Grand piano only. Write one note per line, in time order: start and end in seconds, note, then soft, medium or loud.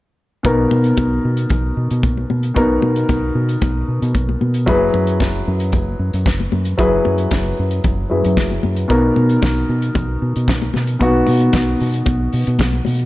0.43 2.51 B2 medium
0.43 2.52 B3 medium
0.43 2.52 D#4 medium
0.43 2.53 A#4 medium
2.54 4.63 B2 medium
2.54 4.63 B3 medium
2.54 4.64 D#4 medium
2.54 4.64 A#4 medium
4.66 6.74 F#3 medium
4.66 6.74 E4 medium
4.66 6.75 G#4 medium
4.66 6.76 B4 medium
6.78 8.08 F#3 medium
6.78 8.08 E4 medium
6.78 8.08 G#4 medium
6.78 8.09 B4 medium
8.10 8.89 F#3 medium
8.10 8.90 E4 soft
8.10 8.90 G#4 soft
8.10 8.90 B4 medium
8.88 10.96 B2 medium
8.88 10.97 B3 medium
8.88 10.97 D#4 medium
8.88 10.98 A#4 medium
10.99 13.05 B2 medium
10.99 13.05 B3 medium
10.99 13.05 D#4 medium
10.99 13.05 F#4 medium